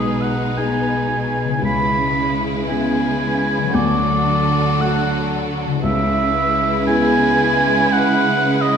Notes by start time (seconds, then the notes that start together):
Already playing: B1 B2 G#3 D#4 G#4 B4
0.22 F#5
0.57 B3 D#4 G#4 G#5
1.45 C#3
1.49 G#3
1.53 E4
1.58 G#3 B4
1.62 C#2 C#3 E4 B4 B5
2.68 B3 E4 G#4 G#5
3.58 D3
3.62 F#3
3.66 F#4
3.71 D2 F#3 F#4 A4 D5
3.75 D3 A4
4.80 A3 F#4 F#5
5.66 C#3
5.70 G#3
5.74 E4
5.79 G#3 E4 B4
5.83 C#2 C#3 B4 E5
6.87 B3 E4 G#4 G#5
7.92 F#5
8.61 D#5